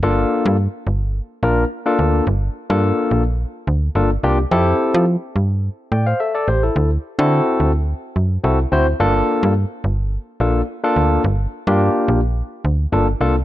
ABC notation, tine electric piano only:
X:1
M:4/4
L:1/16
Q:1/4=107
K:Gdor
V:1 name="Tine electric piano"
[B,DFA]4 z6 [B,DFB] z2 [B,DFA]3 | z3 [B,DFA]4 z4 z [B,DFA] z [B,DFG] z | [CEGA]4 z6 [dg] [cf] [Ae] [Ad] [Gc] [EA]- | [EA] z2 [CE^FA]4 z4 z [CEFA] z [CEFc] z |
[B,DFA]4 z6 [B,DFA] z2 [B,DFA]3 | z3 [B,DFG]4 z4 z [B,DFA] z [B,DFA] z |]